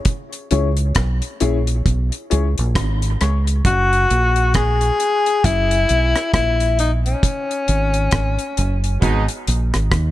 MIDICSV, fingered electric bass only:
0, 0, Header, 1, 2, 480
1, 0, Start_track
1, 0, Tempo, 895522
1, 32, Time_signature, 4, 2, 24, 8
1, 5420, End_track
2, 0, Start_track
2, 0, Title_t, "Fingered electric bass"
2, 0, Program_c, 0, 33
2, 279, Note_on_c, 0, 37, 95
2, 490, Note_off_c, 0, 37, 0
2, 516, Note_on_c, 0, 35, 85
2, 642, Note_off_c, 0, 35, 0
2, 761, Note_on_c, 0, 34, 95
2, 971, Note_off_c, 0, 34, 0
2, 999, Note_on_c, 0, 35, 98
2, 1124, Note_off_c, 0, 35, 0
2, 1246, Note_on_c, 0, 37, 98
2, 1368, Note_off_c, 0, 37, 0
2, 1387, Note_on_c, 0, 34, 94
2, 1469, Note_off_c, 0, 34, 0
2, 1480, Note_on_c, 0, 32, 104
2, 1691, Note_off_c, 0, 32, 0
2, 1723, Note_on_c, 0, 37, 90
2, 1933, Note_off_c, 0, 37, 0
2, 1959, Note_on_c, 0, 30, 105
2, 2171, Note_off_c, 0, 30, 0
2, 2203, Note_on_c, 0, 34, 97
2, 2626, Note_off_c, 0, 34, 0
2, 2921, Note_on_c, 0, 30, 104
2, 3132, Note_off_c, 0, 30, 0
2, 3164, Note_on_c, 0, 35, 84
2, 3288, Note_off_c, 0, 35, 0
2, 3400, Note_on_c, 0, 34, 94
2, 3824, Note_off_c, 0, 34, 0
2, 4120, Note_on_c, 0, 32, 100
2, 4331, Note_off_c, 0, 32, 0
2, 4357, Note_on_c, 0, 32, 89
2, 4484, Note_off_c, 0, 32, 0
2, 4601, Note_on_c, 0, 30, 97
2, 4812, Note_off_c, 0, 30, 0
2, 4839, Note_on_c, 0, 32, 93
2, 4964, Note_off_c, 0, 32, 0
2, 5081, Note_on_c, 0, 34, 99
2, 5206, Note_off_c, 0, 34, 0
2, 5224, Note_on_c, 0, 32, 78
2, 5308, Note_off_c, 0, 32, 0
2, 5318, Note_on_c, 0, 39, 95
2, 5420, Note_off_c, 0, 39, 0
2, 5420, End_track
0, 0, End_of_file